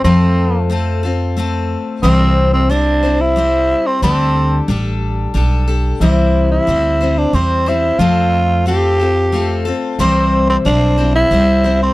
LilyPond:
<<
  \new Staff \with { instrumentName = "Steel-string acoustic guitar" } { \time 3/4 \key c \major \tempo 4 = 90 <f a c' f' a'>4 <a c' f' a'>8 <c' f' a'>8 <a c' f' a'>4 | <c e g c' e' c''>4 <g c' e' c''>8 <g c' e' c''>8 <g c' e' c''>4 | <d g d' g' a'>4 <g d' g' a'>4 <g d' g' a'>8 <d' g' a'>8 | <c e g c' e' c''>4 <g c' e' c''>8 <g c' e' c''>8 <g c' e' c''>8 <g c' e' c''>8 |
<f a c' f' a'>4 <a c' f' a'>8 <c' f' a'>8 <a c' f' a'>8 <c' f' a'>8 | <c e g c' e' c''>4 <g c' e' c''>8 <g c' e' c''>8 <g c' e' c''>8 <g c' e' c''>8 | }
  \new Staff \with { instrumentName = "Tenor saxophone" } { \time 3/4 \key c \major c'4 r2 | c'8. c'16 d'8. e'4 c'16 | c'4 r2 | e'8. e'4 d'16 c'8 e'8 |
f'4 g'4. r8 | c'8. c'16 d'8. e'4 c'16 | }
  \new Staff \with { instrumentName = "Upright bass" } { \clef bass \time 3/4 \key c \major f,2. | c,2. | d,4 a,,4 b,,4 | c,4 d,4 e,4 |
f,2. | c,4 b,,4 c,4 | }
>>